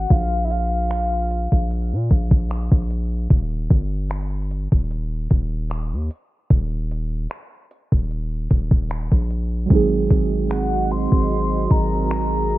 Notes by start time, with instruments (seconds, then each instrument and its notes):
Already playing: soft synth lead F#5
0.10 808-style bass A#1, soft synth lead F5, kick, closed hi-hat
0.45 soft synth lead E5
0.51 soft synth lead F5, closed hi-hat
0.90 finger snap, closed hi-hat
1.31 closed hi-hat
1.52 808-style bass A#1, kick
1.71 closed hi-hat
1.93 808-style bass A#2
2.10 808-style bass A#1, kick, closed hi-hat
2.31 kick
2.50 finger snap, closed hi-hat
2.72 808-style bass A#1, kick
2.90 closed hi-hat
3.30 808-style bass D#1, kick, closed hi-hat
3.70 808-style bass G1, kick, closed hi-hat
4.10 finger snap, closed hi-hat
4.51 closed hi-hat
4.72 808-style bass D#1, kick
4.91 closed hi-hat
5.30 808-style bass D#1, kick, closed hi-hat
5.70 finger snap, closed hi-hat
5.93 808-style bass D#2
6.11 closed hi-hat
6.50 808-style bass D#1, kick, closed hi-hat
6.91 closed hi-hat
7.30 finger snap, closed hi-hat
7.71 closed hi-hat
7.92 808-style bass D#1, kick
8.11 closed hi-hat
8.50 808-style bass D#1, kick, closed hi-hat
8.71 kick
8.90 finger snap, closed hi-hat
9.12 808-style bass A#1, kick
9.30 closed hi-hat
9.66 synth keys F#3 G#3
9.70 808-style bass G#1, synth keys C4 D#4, analog synth pad C4 F#4 G#4 D#5, kick, closed hi-hat
9.75 synth keys G#4
10.11 808-style bass G#1, kick, closed hi-hat
10.50 soft synth lead F#5, finger snap, closed hi-hat
10.91 soft synth lead C6, closed hi-hat
11.12 808-style bass G#1, kick
11.31 closed hi-hat
11.70 808-style bass G#1, soft synth lead A#5, kick, closed hi-hat
12.10 finger snap, closed hi-hat
12.50 closed hi-hat